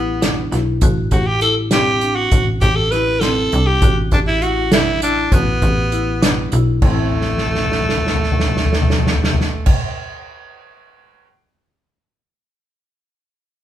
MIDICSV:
0, 0, Header, 1, 5, 480
1, 0, Start_track
1, 0, Tempo, 600000
1, 663, Time_signature, 5, 3, 24, 8
1, 10908, End_track
2, 0, Start_track
2, 0, Title_t, "Tenor saxophone"
2, 0, Program_c, 0, 66
2, 0, Note_on_c, 0, 59, 78
2, 377, Note_off_c, 0, 59, 0
2, 905, Note_on_c, 0, 66, 73
2, 1020, Note_on_c, 0, 67, 80
2, 1032, Note_off_c, 0, 66, 0
2, 1129, Note_off_c, 0, 67, 0
2, 1134, Note_on_c, 0, 69, 81
2, 1244, Note_off_c, 0, 69, 0
2, 1378, Note_on_c, 0, 67, 86
2, 1726, Note_on_c, 0, 66, 86
2, 1738, Note_off_c, 0, 67, 0
2, 1974, Note_off_c, 0, 66, 0
2, 2090, Note_on_c, 0, 67, 90
2, 2203, Note_on_c, 0, 69, 81
2, 2215, Note_off_c, 0, 67, 0
2, 2332, Note_on_c, 0, 71, 88
2, 2344, Note_off_c, 0, 69, 0
2, 2563, Note_on_c, 0, 69, 95
2, 2575, Note_off_c, 0, 71, 0
2, 2930, Note_on_c, 0, 67, 87
2, 2942, Note_off_c, 0, 69, 0
2, 3176, Note_off_c, 0, 67, 0
2, 3305, Note_on_c, 0, 62, 79
2, 3358, Note_off_c, 0, 62, 0
2, 3420, Note_on_c, 0, 64, 84
2, 3537, Note_on_c, 0, 66, 85
2, 3549, Note_off_c, 0, 64, 0
2, 3779, Note_off_c, 0, 66, 0
2, 3790, Note_on_c, 0, 64, 88
2, 4009, Note_off_c, 0, 64, 0
2, 4025, Note_on_c, 0, 62, 85
2, 4267, Note_on_c, 0, 59, 77
2, 4279, Note_off_c, 0, 62, 0
2, 5224, Note_off_c, 0, 59, 0
2, 5462, Note_on_c, 0, 57, 83
2, 7805, Note_off_c, 0, 57, 0
2, 10908, End_track
3, 0, Start_track
3, 0, Title_t, "Marimba"
3, 0, Program_c, 1, 12
3, 172, Note_on_c, 1, 62, 77
3, 305, Note_off_c, 1, 62, 0
3, 414, Note_on_c, 1, 64, 66
3, 546, Note_off_c, 1, 64, 0
3, 663, Note_on_c, 1, 66, 82
3, 793, Note_off_c, 1, 66, 0
3, 899, Note_on_c, 1, 67, 69
3, 1030, Note_off_c, 1, 67, 0
3, 1135, Note_on_c, 1, 64, 66
3, 1267, Note_off_c, 1, 64, 0
3, 1383, Note_on_c, 1, 60, 69
3, 1513, Note_off_c, 1, 60, 0
3, 1621, Note_on_c, 1, 62, 67
3, 1751, Note_off_c, 1, 62, 0
3, 1867, Note_on_c, 1, 66, 77
3, 1995, Note_off_c, 1, 66, 0
3, 2102, Note_on_c, 1, 67, 71
3, 2232, Note_off_c, 1, 67, 0
3, 2343, Note_on_c, 1, 64, 74
3, 2473, Note_off_c, 1, 64, 0
3, 2582, Note_on_c, 1, 60, 76
3, 2712, Note_off_c, 1, 60, 0
3, 2826, Note_on_c, 1, 62, 68
3, 2955, Note_off_c, 1, 62, 0
3, 3067, Note_on_c, 1, 66, 81
3, 3196, Note_off_c, 1, 66, 0
3, 3306, Note_on_c, 1, 67, 67
3, 3435, Note_off_c, 1, 67, 0
3, 3543, Note_on_c, 1, 64, 70
3, 3673, Note_off_c, 1, 64, 0
3, 3787, Note_on_c, 1, 62, 72
3, 3915, Note_off_c, 1, 62, 0
3, 4027, Note_on_c, 1, 64, 65
3, 4156, Note_off_c, 1, 64, 0
3, 4267, Note_on_c, 1, 66, 78
3, 4395, Note_off_c, 1, 66, 0
3, 4500, Note_on_c, 1, 67, 70
3, 4630, Note_off_c, 1, 67, 0
3, 4738, Note_on_c, 1, 64, 68
3, 4869, Note_off_c, 1, 64, 0
3, 4973, Note_on_c, 1, 62, 76
3, 5105, Note_off_c, 1, 62, 0
3, 5214, Note_on_c, 1, 64, 66
3, 5346, Note_off_c, 1, 64, 0
3, 5456, Note_on_c, 1, 57, 58
3, 5489, Note_on_c, 1, 60, 60
3, 5522, Note_on_c, 1, 64, 62
3, 5552, Note_on_c, 1, 69, 63
3, 7802, Note_off_c, 1, 57, 0
3, 7819, Note_off_c, 1, 60, 0
3, 7835, Note_off_c, 1, 64, 0
3, 7850, Note_off_c, 1, 69, 0
3, 10908, End_track
4, 0, Start_track
4, 0, Title_t, "Analog synth bass"
4, 0, Program_c, 2, 38
4, 0, Note_on_c, 2, 33, 93
4, 388, Note_off_c, 2, 33, 0
4, 418, Note_on_c, 2, 35, 86
4, 642, Note_off_c, 2, 35, 0
4, 656, Note_on_c, 2, 33, 97
4, 881, Note_off_c, 2, 33, 0
4, 893, Note_on_c, 2, 33, 86
4, 1826, Note_off_c, 2, 33, 0
4, 1856, Note_on_c, 2, 33, 93
4, 2082, Note_off_c, 2, 33, 0
4, 2095, Note_on_c, 2, 33, 99
4, 2786, Note_off_c, 2, 33, 0
4, 2824, Note_on_c, 2, 36, 97
4, 3045, Note_off_c, 2, 36, 0
4, 3055, Note_on_c, 2, 33, 92
4, 3281, Note_off_c, 2, 33, 0
4, 3296, Note_on_c, 2, 33, 88
4, 4226, Note_off_c, 2, 33, 0
4, 4256, Note_on_c, 2, 33, 100
4, 4481, Note_off_c, 2, 33, 0
4, 4496, Note_on_c, 2, 33, 97
4, 5186, Note_off_c, 2, 33, 0
4, 5221, Note_on_c, 2, 35, 96
4, 5443, Note_off_c, 2, 35, 0
4, 5457, Note_on_c, 2, 33, 97
4, 7803, Note_off_c, 2, 33, 0
4, 10908, End_track
5, 0, Start_track
5, 0, Title_t, "Drums"
5, 178, Note_on_c, 9, 38, 96
5, 178, Note_on_c, 9, 42, 77
5, 258, Note_off_c, 9, 38, 0
5, 258, Note_off_c, 9, 42, 0
5, 418, Note_on_c, 9, 38, 31
5, 418, Note_on_c, 9, 42, 57
5, 498, Note_off_c, 9, 38, 0
5, 498, Note_off_c, 9, 42, 0
5, 650, Note_on_c, 9, 42, 80
5, 654, Note_on_c, 9, 36, 101
5, 730, Note_off_c, 9, 42, 0
5, 734, Note_off_c, 9, 36, 0
5, 889, Note_on_c, 9, 42, 53
5, 894, Note_on_c, 9, 36, 70
5, 969, Note_off_c, 9, 42, 0
5, 974, Note_off_c, 9, 36, 0
5, 1127, Note_on_c, 9, 42, 56
5, 1207, Note_off_c, 9, 42, 0
5, 1366, Note_on_c, 9, 38, 96
5, 1366, Note_on_c, 9, 42, 73
5, 1446, Note_off_c, 9, 38, 0
5, 1446, Note_off_c, 9, 42, 0
5, 1609, Note_on_c, 9, 42, 56
5, 1689, Note_off_c, 9, 42, 0
5, 1851, Note_on_c, 9, 42, 73
5, 1854, Note_on_c, 9, 36, 107
5, 1931, Note_off_c, 9, 42, 0
5, 1934, Note_off_c, 9, 36, 0
5, 2089, Note_on_c, 9, 42, 54
5, 2093, Note_on_c, 9, 36, 71
5, 2169, Note_off_c, 9, 42, 0
5, 2173, Note_off_c, 9, 36, 0
5, 2334, Note_on_c, 9, 38, 32
5, 2334, Note_on_c, 9, 42, 54
5, 2414, Note_off_c, 9, 38, 0
5, 2414, Note_off_c, 9, 42, 0
5, 2570, Note_on_c, 9, 38, 102
5, 2570, Note_on_c, 9, 42, 70
5, 2650, Note_off_c, 9, 38, 0
5, 2650, Note_off_c, 9, 42, 0
5, 2817, Note_on_c, 9, 42, 57
5, 2897, Note_off_c, 9, 42, 0
5, 3053, Note_on_c, 9, 42, 78
5, 3055, Note_on_c, 9, 36, 99
5, 3133, Note_off_c, 9, 42, 0
5, 3135, Note_off_c, 9, 36, 0
5, 3291, Note_on_c, 9, 42, 55
5, 3296, Note_on_c, 9, 36, 69
5, 3371, Note_off_c, 9, 42, 0
5, 3376, Note_off_c, 9, 36, 0
5, 3534, Note_on_c, 9, 42, 53
5, 3614, Note_off_c, 9, 42, 0
5, 3773, Note_on_c, 9, 38, 106
5, 3773, Note_on_c, 9, 42, 76
5, 3853, Note_off_c, 9, 38, 0
5, 3853, Note_off_c, 9, 42, 0
5, 4015, Note_on_c, 9, 42, 63
5, 4095, Note_off_c, 9, 42, 0
5, 4254, Note_on_c, 9, 36, 105
5, 4255, Note_on_c, 9, 42, 86
5, 4334, Note_off_c, 9, 36, 0
5, 4335, Note_off_c, 9, 42, 0
5, 4495, Note_on_c, 9, 36, 73
5, 4495, Note_on_c, 9, 42, 58
5, 4575, Note_off_c, 9, 36, 0
5, 4575, Note_off_c, 9, 42, 0
5, 4735, Note_on_c, 9, 42, 63
5, 4815, Note_off_c, 9, 42, 0
5, 4980, Note_on_c, 9, 38, 100
5, 4980, Note_on_c, 9, 42, 82
5, 5060, Note_off_c, 9, 38, 0
5, 5060, Note_off_c, 9, 42, 0
5, 5215, Note_on_c, 9, 42, 62
5, 5295, Note_off_c, 9, 42, 0
5, 5455, Note_on_c, 9, 49, 85
5, 5456, Note_on_c, 9, 36, 96
5, 5535, Note_off_c, 9, 49, 0
5, 5536, Note_off_c, 9, 36, 0
5, 5690, Note_on_c, 9, 43, 44
5, 5769, Note_on_c, 9, 38, 44
5, 5770, Note_off_c, 9, 43, 0
5, 5834, Note_on_c, 9, 43, 43
5, 5849, Note_off_c, 9, 38, 0
5, 5903, Note_on_c, 9, 38, 46
5, 5914, Note_off_c, 9, 43, 0
5, 5969, Note_on_c, 9, 43, 47
5, 5983, Note_off_c, 9, 38, 0
5, 6039, Note_on_c, 9, 38, 47
5, 6049, Note_off_c, 9, 43, 0
5, 6113, Note_on_c, 9, 43, 48
5, 6119, Note_off_c, 9, 38, 0
5, 6174, Note_on_c, 9, 38, 50
5, 6193, Note_off_c, 9, 43, 0
5, 6245, Note_on_c, 9, 43, 53
5, 6254, Note_off_c, 9, 38, 0
5, 6312, Note_on_c, 9, 38, 53
5, 6325, Note_off_c, 9, 43, 0
5, 6376, Note_on_c, 9, 43, 56
5, 6392, Note_off_c, 9, 38, 0
5, 6453, Note_on_c, 9, 38, 62
5, 6456, Note_off_c, 9, 43, 0
5, 6515, Note_on_c, 9, 43, 60
5, 6533, Note_off_c, 9, 38, 0
5, 6584, Note_on_c, 9, 38, 66
5, 6595, Note_off_c, 9, 43, 0
5, 6654, Note_on_c, 9, 43, 66
5, 6664, Note_off_c, 9, 38, 0
5, 6717, Note_on_c, 9, 38, 64
5, 6734, Note_off_c, 9, 43, 0
5, 6783, Note_on_c, 9, 43, 62
5, 6797, Note_off_c, 9, 38, 0
5, 6854, Note_on_c, 9, 38, 65
5, 6863, Note_off_c, 9, 43, 0
5, 6918, Note_on_c, 9, 43, 67
5, 6934, Note_off_c, 9, 38, 0
5, 6982, Note_on_c, 9, 38, 71
5, 6998, Note_off_c, 9, 43, 0
5, 7055, Note_on_c, 9, 43, 74
5, 7062, Note_off_c, 9, 38, 0
5, 7121, Note_on_c, 9, 38, 74
5, 7135, Note_off_c, 9, 43, 0
5, 7189, Note_on_c, 9, 43, 74
5, 7201, Note_off_c, 9, 38, 0
5, 7253, Note_on_c, 9, 38, 75
5, 7269, Note_off_c, 9, 43, 0
5, 7318, Note_on_c, 9, 43, 72
5, 7333, Note_off_c, 9, 38, 0
5, 7389, Note_on_c, 9, 38, 80
5, 7398, Note_off_c, 9, 43, 0
5, 7462, Note_on_c, 9, 43, 81
5, 7469, Note_off_c, 9, 38, 0
5, 7525, Note_on_c, 9, 38, 80
5, 7542, Note_off_c, 9, 43, 0
5, 7605, Note_off_c, 9, 38, 0
5, 7727, Note_on_c, 9, 49, 91
5, 7733, Note_on_c, 9, 36, 99
5, 7807, Note_off_c, 9, 49, 0
5, 7813, Note_off_c, 9, 36, 0
5, 10908, End_track
0, 0, End_of_file